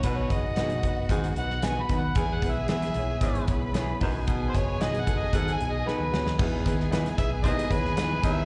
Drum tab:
CC |----------------|----------------|----------------|x---------------|
HH |x-x-xxx-xxx-x-x-|x-x-xxx-xxx-x-o-|x-x-xxx-xxx-----|--x-xxx-xxx-x-x-|
SD |----o------oo---|----oo------o---|----o-------o-oo|---ooo-----oo---|
BD |o-o---o-o-----o-|o-o-----o-o---o-|o-o---o-o-------|o-o---o-o-o---o-|